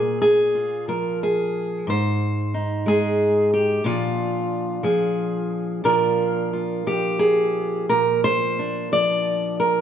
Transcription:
Already playing: A#2 G#4
0.22 G#4
0.55 F4
0.88 F3 A#4
1.23 G#4
1.87 G#2 C5
2.54 D#4
2.86 G#3 G#4
3.54 G4
3.84 A#2 F3 D4 F4
4.83 F3 G#4
5.84 A#2 F3 D4 F4 A#4
6.53 F4
6.86 F3 G4
7.19 G#4
7.89 A#2 A#4
8.24 C5
8.59 D4
8.92 F3 D5
9.60 A#4

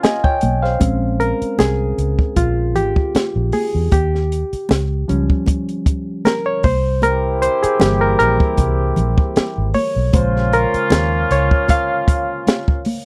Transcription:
Already playing: A#3 C#4 F4 G#4
0.03 D#5 G#5, snare, closed hi-hat, high conga
0.24 C#5 G5, kick
0.41 B1, closed hi-hat, high conga
0.62 C5 F5, snare
0.80 A#1 G#3 C4 C#4, kick, closed hi-hat, muted conga
1.20 A#4, closed hi-hat
1.42 muted fingered electric bass stroke, closed hi-hat
1.59 C2 G#4, snare, closed hi-hat, high conga
1.98 C#2, closed hi-hat
2.19 kick
2.36 A#1 F4, kick, closed hi-hat, muted conga
2.75 G#1 G4, closed hi-hat, low conga
2.96 kick
3.15 muted fingered electric bass stroke, snare, closed hi-hat, high conga
3.36 A#1
3.52 G#4, open hi-hat, high conga
3.75 E2
3.92 D#2 G4, kick, closed hi-hat, muted conga
4.15 snare
4.32 closed hi-hat
4.53 muted fingered electric bass stroke, closed hi-hat
4.69 C#2, snare, closed hi-hat, high conga
5.08 C#2 F3 G3 C#4, closed hi-hat
5.30 kick
5.46 kick, closed hi-hat, muted conga
5.69 closed hi-hat
5.86 kick, closed hi-hat
6.25 A#4, snare, closed hi-hat, high conga
6.46 C#5
6.63 C2 C5, kick, open hi-hat, high conga
7.02 C4 E4 G4 A#4, closed hi-hat, muted conga
7.42 C5, closed hi-hat
7.63 G#4, muted fingered electric bass stroke, closed hi-hat
7.80 G1 E3 G3 A#3 G4, snare, closed hi-hat, high conga
8.01 A#4
8.19 A#1 A#4, closed hi-hat
8.40 kick
8.57 C2, kick, closed hi-hat, muted conga
8.96 A#1, closed hi-hat, low conga
9.18 kick
9.36 muted fingered electric bass stroke, snare, closed hi-hat, high conga
9.58 G#1
9.74 C#5, open hi-hat, high conga
9.96 B1
10.13 A#1 C#3 G#3 A#3 C#4 F4 C5, kick, closed hi-hat, muted conga
10.36 snare
10.53 A#4, closed hi-hat, muted conga
10.74 muted fingered electric bass stroke, closed hi-hat
10.90 D#2, snare, closed hi-hat, high conga
11.31 C#2 C#5, closed hi-hat
11.51 kick
11.68 F5, kick, closed hi-hat, muted conga
12.08 kick, closed hi-hat
12.47 snare, closed hi-hat, high conga
12.68 kick
12.85 open hi-hat, high conga

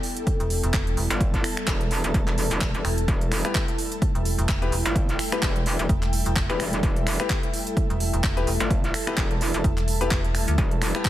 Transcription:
Already playing: G3 B3 E4 A4 D5
0.02 A5, open hi-hat
0.17 closed hi-hat
0.27 kick, closed hi-hat
0.40 E1, closed hi-hat
0.50 open hi-hat
0.63 E1, closed hi-hat
0.74 E1, kick, clap, closed hi-hat
0.87 closed hi-hat
0.97 E1, open hi-hat
1.10 G1, closed hi-hat
1.21 kick, closed hi-hat
1.34 kick, closed hi-hat
1.44 finger snap, open hi-hat
1.57 finger snap
1.67 E1, kick, clap, closed hi-hat
1.81 closed hi-hat
1.91 open hi-hat
2.04 E1, closed hi-hat
2.14 E1, kick, closed hi-hat
2.28 clap, closed hi-hat
2.38 open hi-hat
2.51 E1, closed hi-hat
2.61 kick, clap, closed hi-hat
2.74 E1, closed hi-hat
2.85 E1, finger snap, open hi-hat
2.98 closed hi-hat
3.08 E1 A3 E4, kick, closed hi-hat
3.21 closed hi-hat
3.32 finger snap, open hi-hat
3.45 B3 E4 G4 B4, finger snap, closed hi-hat
3.55 kick, clap, closed hi-hat
3.68 closed hi-hat
3.74 E5 G5
3.78 open hi-hat
3.92 closed hi-hat
4.02 kick, closed hi-hat
4.15 E1, closed hi-hat
4.25 open hi-hat
4.38 E1, closed hi-hat
4.49 E1, kick, clap, closed hi-hat
4.62 B3 E4 G4 B4, closed hi-hat
4.72 E1, open hi-hat
4.86 G1, closed hi-hat
4.96 kick, closed hi-hat
5.09 closed hi-hat
5.19 finger snap, open hi-hat
5.32 B3 E4 G4 B4, finger snap, closed hi-hat
5.42 E1, kick, clap, closed hi-hat
5.56 closed hi-hat
5.66 open hi-hat
5.79 E1, closed hi-hat
5.89 E1, kick, closed hi-hat
6.03 clap, closed hi-hat
6.13 open hi-hat
6.26 E1, closed hi-hat
6.36 kick, clap, closed hi-hat
6.49 E1 B3 E4 G4 B4, closed hi-hat
6.60 finger snap, open hi-hat
6.73 closed hi-hat
6.83 E1 A4, kick, closed hi-hat
6.96 closed hi-hat
7.07 finger snap, open hi-hat
7.20 B3 E4 G4 B4, finger snap, closed hi-hat
7.30 kick, clap, closed hi-hat
7.43 closed hi-hat
7.52 A5, open hi-hat
7.67 closed hi-hat
7.77 kick, closed hi-hat
7.90 E1, closed hi-hat
8.00 open hi-hat
8.13 E1, closed hi-hat
8.24 E1, kick, clap, closed hi-hat
8.37 B3 E4 G4 B4, closed hi-hat
8.47 E1, open hi-hat
8.60 G1, closed hi-hat
8.71 kick, closed hi-hat
8.84 closed hi-hat
8.94 finger snap, open hi-hat
9.07 B3 E4 G4 B4, finger snap
9.17 E1, kick, clap, closed hi-hat
9.31 closed hi-hat
9.41 open hi-hat
9.54 E1, closed hi-hat
9.64 E1, kick, closed hi-hat
9.78 clap, closed hi-hat
9.88 open hi-hat
10.01 B3 E4 G4 B4, closed hi-hat
10.11 E1, kick, clap, closed hi-hat
10.24 closed hi-hat
10.35 finger snap, open hi-hat
10.48 D2, closed hi-hat
10.58 E1 E4, kick, closed hi-hat
10.71 closed hi-hat
10.82 finger snap, open hi-hat
10.95 B3 E4 G4 B4, finger snap, closed hi-hat
11.05 kick, clap, closed hi-hat

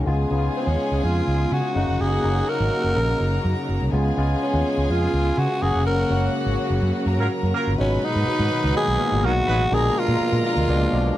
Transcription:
0.06 C#2 C#3 G#3 B3 F4 G#4 G#5
0.30 C#2 C#3 G#3 B3 D#4
0.38 F4
0.57 C#4
0.67 D#2
0.92 C#2
1.04 F2 F4
1.27 C#2
1.52 C#3 F#4
1.75 F#1 C#3 F#3 A3 A#3 D#4 F#4 F#5
1.81 A#3
1.88 F1
2.00 F#1 G#4
2.23 F#1 C#3 F#3 A#3 D#4
2.49 A#4
2.60 G#1
2.84 F#1
2.96 A#1 A#4 A#5
3.20 F#1
3.45 F#2
3.69 F#1
3.81 C2
3.92 C#2 C#3 G#3 B3 F4 G#4 G#5
4.17 C#2 C#3 G#3 B3 F4
4.43 C#4
4.54 D#2
4.77 C#2
4.89 F2 F4
5.13 C#2
5.38 C#3 F#4
5.61 F#1 C#3 F#3 A#3 C#4 F#4 G#4 F#5
5.75 F1
5.86 F#1 A#4
6.10 F#1 C#3 F#3 G#3 F#4
6.17 A#3
6.46 G#1
6.70 F#1
6.82 F#2
7.06 F#2 A#4 A#5
7.19 G#2 F#3 F4 A#4
7.43 F#2
7.55 F#3 F4 A#4
7.67 G1
7.77 G#1 A#2 B2 D#3 F#3 G#3 C#4 D#4 F#4 B4 B5
8.05 D#4
8.16 G#2
8.28 muted fingered electric bass stroke
8.40 G#2
8.64 C#2
8.75 B2 F#3 G#3 A#3 D#4 G#4
8.88 B1
8.98 A#2 B2 F#3 G#3 F5
9.12 G#1
9.24 B1 F#3 D#4 F#4 A#4
9.48 A1 F#3 D#4 B4
9.70 A#1 B2 D3 F3 G#3 A#3 D4 F4 G#4 A#4 A#5
9.99 F4
10.08 A#2
10.21 muted fingered electric bass stroke
10.32 A#2
10.46 F4
10.56 D2
10.68 C#2 B2 F3 G#3 A#3 D4
10.91 B1 B2 F3 G#3 A#3 D4

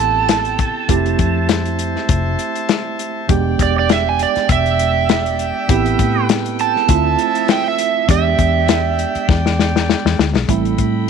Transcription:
Already playing: A1 B3 C4 E4 G4 A4 G5 A5
0.29 snare, closed hi-hat
0.45 closed hi-hat
0.59 kick, closed hi-hat
0.88 F1 A3 C4 E4 G4 C5 E5 A5, kick, closed hi-hat
1.06 closed hi-hat
1.19 F2, kick, closed hi-hat
1.49 snare, closed hi-hat
1.65 closed hi-hat
1.79 closed hi-hat
1.96 snare
2.09 F1, kick, closed hi-hat
2.39 closed hi-hat
2.55 closed hi-hat
2.69 snare, closed hi-hat
2.99 closed hi-hat
3.29 E1 G#3 B3 D4 G4 D5 G5, kick, closed hi-hat
3.59 E1 D5, kick, closed hi-hat
3.79 D5
3.89 E5, snare, closed hi-hat
4.09 G#5
4.19 D5, closed hi-hat
4.36 muted fingered electric bass stroke, snare, closed hi-hat
4.49 E1 E5, kick, closed hi-hat
4.66 closed hi-hat
4.79 closed hi-hat
5.09 snare, closed hi-hat
5.26 closed hi-hat
5.39 closed hi-hat
5.69 A1 B3 C4 E4 G4 A4 B4, kick, closed hi-hat
5.86 closed hi-hat
5.99 A2, kick, closed hi-hat
6.29 snare, closed hi-hat
6.46 closed hi-hat
6.59 A5, closed hi-hat
6.76 snare
6.88 D2 F3 A3 C4 E4 F4 E5, kick, closed hi-hat
7.19 closed hi-hat
7.35 closed hi-hat
7.48 G5, snare, closed hi-hat
7.68 E5
7.78 closed hi-hat
8.08 E2 G#3 B3 D4 G4 D5 E5 G5, kick, closed hi-hat
8.39 E2, kick, closed hi-hat
8.68 snare, closed hi-hat
8.99 closed hi-hat
9.15 muted fingered electric bass stroke, closed hi-hat
9.29 E2, kick, snare
9.46 snare
9.59 snare
9.76 snare
9.90 snare
10.05 E2, snare
10.19 D2, snare
10.35 B1, snare
10.48 A1 G3 A3 C4 E4 A4 G5 B5, kick, closed hi-hat
10.65 closed hi-hat
10.78 A2, kick, closed hi-hat

